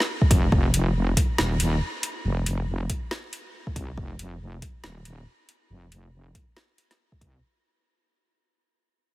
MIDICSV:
0, 0, Header, 1, 3, 480
1, 0, Start_track
1, 0, Tempo, 431655
1, 580, Time_signature, 4, 2, 24, 8
1, 10165, End_track
2, 0, Start_track
2, 0, Title_t, "Wobble bass"
2, 0, Program_c, 0, 39
2, 340, Note_on_c, 0, 29, 100
2, 564, Note_off_c, 0, 29, 0
2, 580, Note_on_c, 0, 29, 101
2, 1287, Note_off_c, 0, 29, 0
2, 1540, Note_on_c, 0, 27, 88
2, 2007, Note_off_c, 0, 27, 0
2, 2501, Note_on_c, 0, 29, 99
2, 3208, Note_off_c, 0, 29, 0
2, 4180, Note_on_c, 0, 36, 96
2, 4404, Note_off_c, 0, 36, 0
2, 4420, Note_on_c, 0, 29, 96
2, 5127, Note_off_c, 0, 29, 0
2, 5378, Note_on_c, 0, 27, 91
2, 5846, Note_off_c, 0, 27, 0
2, 6340, Note_on_c, 0, 29, 97
2, 7047, Note_off_c, 0, 29, 0
2, 8020, Note_on_c, 0, 36, 94
2, 8244, Note_off_c, 0, 36, 0
2, 10165, End_track
3, 0, Start_track
3, 0, Title_t, "Drums"
3, 4, Note_on_c, 9, 38, 38
3, 115, Note_off_c, 9, 38, 0
3, 240, Note_on_c, 9, 36, 63
3, 341, Note_off_c, 9, 36, 0
3, 341, Note_on_c, 9, 36, 106
3, 342, Note_on_c, 9, 42, 74
3, 452, Note_off_c, 9, 36, 0
3, 454, Note_off_c, 9, 42, 0
3, 580, Note_on_c, 9, 36, 116
3, 691, Note_off_c, 9, 36, 0
3, 821, Note_on_c, 9, 42, 71
3, 932, Note_off_c, 9, 42, 0
3, 1300, Note_on_c, 9, 36, 58
3, 1301, Note_on_c, 9, 42, 71
3, 1411, Note_off_c, 9, 36, 0
3, 1413, Note_off_c, 9, 42, 0
3, 1539, Note_on_c, 9, 38, 124
3, 1650, Note_off_c, 9, 38, 0
3, 1778, Note_on_c, 9, 42, 73
3, 1890, Note_off_c, 9, 42, 0
3, 2258, Note_on_c, 9, 42, 71
3, 2370, Note_off_c, 9, 42, 0
3, 2740, Note_on_c, 9, 42, 72
3, 2851, Note_off_c, 9, 42, 0
3, 3220, Note_on_c, 9, 36, 56
3, 3220, Note_on_c, 9, 42, 70
3, 3332, Note_off_c, 9, 36, 0
3, 3332, Note_off_c, 9, 42, 0
3, 3460, Note_on_c, 9, 38, 116
3, 3571, Note_off_c, 9, 38, 0
3, 3701, Note_on_c, 9, 42, 74
3, 3812, Note_off_c, 9, 42, 0
3, 4080, Note_on_c, 9, 36, 58
3, 4181, Note_off_c, 9, 36, 0
3, 4181, Note_on_c, 9, 36, 91
3, 4182, Note_on_c, 9, 42, 70
3, 4292, Note_off_c, 9, 36, 0
3, 4294, Note_off_c, 9, 42, 0
3, 4421, Note_on_c, 9, 36, 112
3, 4532, Note_off_c, 9, 36, 0
3, 4662, Note_on_c, 9, 42, 74
3, 4773, Note_off_c, 9, 42, 0
3, 5140, Note_on_c, 9, 36, 55
3, 5140, Note_on_c, 9, 42, 78
3, 5251, Note_off_c, 9, 36, 0
3, 5251, Note_off_c, 9, 42, 0
3, 5378, Note_on_c, 9, 38, 116
3, 5489, Note_off_c, 9, 38, 0
3, 5620, Note_on_c, 9, 42, 75
3, 5731, Note_off_c, 9, 42, 0
3, 6102, Note_on_c, 9, 42, 70
3, 6213, Note_off_c, 9, 42, 0
3, 6582, Note_on_c, 9, 42, 77
3, 6693, Note_off_c, 9, 42, 0
3, 7059, Note_on_c, 9, 36, 60
3, 7061, Note_on_c, 9, 42, 78
3, 7171, Note_off_c, 9, 36, 0
3, 7173, Note_off_c, 9, 42, 0
3, 7301, Note_on_c, 9, 38, 117
3, 7412, Note_off_c, 9, 38, 0
3, 7542, Note_on_c, 9, 42, 76
3, 7653, Note_off_c, 9, 42, 0
3, 7682, Note_on_c, 9, 38, 34
3, 7682, Note_on_c, 9, 42, 36
3, 7794, Note_off_c, 9, 38, 0
3, 7794, Note_off_c, 9, 42, 0
3, 7919, Note_on_c, 9, 36, 60
3, 8020, Note_off_c, 9, 36, 0
3, 8020, Note_on_c, 9, 36, 95
3, 8023, Note_on_c, 9, 42, 73
3, 8131, Note_off_c, 9, 36, 0
3, 8134, Note_off_c, 9, 42, 0
3, 10165, End_track
0, 0, End_of_file